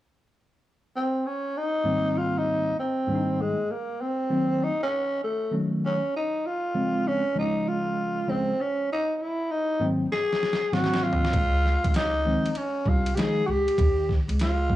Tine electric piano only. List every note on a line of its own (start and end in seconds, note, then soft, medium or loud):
1.84 2.72 G#2 medium
1.84 2.72 D#3 medium
1.84 2.72 G3 soft
1.84 2.73 A#3 medium
1.84 2.73 C4 medium
3.07 3.54 G#2 medium
3.07 3.54 D#3 medium
3.07 3.54 G3 medium
3.07 3.54 A#3 medium
3.07 3.16 D4 medium
3.15 3.58 D#4 medium
4.30 4.68 D#3 medium
4.30 4.68 F#3 medium
4.30 4.69 A#3 medium
4.30 4.69 C4 medium
5.51 5.98 D#3 medium
5.51 5.99 F#3 medium
5.51 5.99 A3 medium
5.51 5.99 C#4 medium
6.74 7.21 C#3 medium
6.74 7.21 F3 medium
6.74 7.21 G#3 medium
6.74 7.22 C4 medium
7.35 8.23 C#3 medium
7.35 8.23 F3 medium
7.35 8.23 G#3 medium
7.35 8.24 C#4 medium
8.27 8.52 C#3 medium
8.27 8.52 F3 medium
8.27 8.52 G#3 medium
8.27 8.52 C#4 medium
9.80 10.04 G#2 medium
9.80 10.05 D#3 medium
9.80 10.05 F#3 medium
9.80 10.05 A#3 medium
9.80 10.05 C4 medium
10.72 11.33 G#2 medium
10.72 11.34 D#3 medium
10.72 11.34 F#3 medium
10.72 11.34 A#3 medium
10.72 11.34 C4 medium
12.25 12.49 D#3 medium
12.25 12.50 F3 medium
12.25 12.50 G#3 medium
12.25 12.50 C4 medium
13.17 13.41 D#3 medium
13.17 13.41 F3 medium
13.17 13.42 G#3 medium
13.17 13.42 D#4 medium
14.70 14.76 C#3 medium
14.70 14.76 F3 medium
14.70 14.76 G3 medium
14.70 14.76 A#3 medium